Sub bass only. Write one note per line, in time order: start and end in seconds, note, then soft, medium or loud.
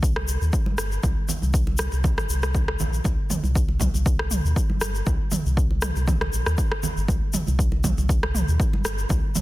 0.00 0.37 C2 medium
0.41 0.51 D#2 medium
0.78 0.99 G1 medium
1.03 1.14 C2 medium
1.42 1.88 C2 medium
1.92 2.19 C2 medium
2.17 2.27 G1 medium
2.29 2.76 C2 medium
2.80 3.00 A#1 loud
3.05 3.16 C2 loud
3.44 3.90 C2 medium
3.94 4.40 C2 medium
4.44 4.54 D#2 medium
4.81 5.02 G1 medium
5.07 5.18 C2 loud
5.45 5.92 C2 medium
5.96 6.29 C2 medium
6.33 6.44 A#1 medium
6.46 6.56 D#2 medium
6.97 7.06 G1 loud
7.08 7.19 C2 loud
7.47 7.93 C2 medium
7.98 8.44 C2 medium
8.48 8.57 D#2 loud
8.85 9.05 G1 medium
9.10 9.21 C2 loud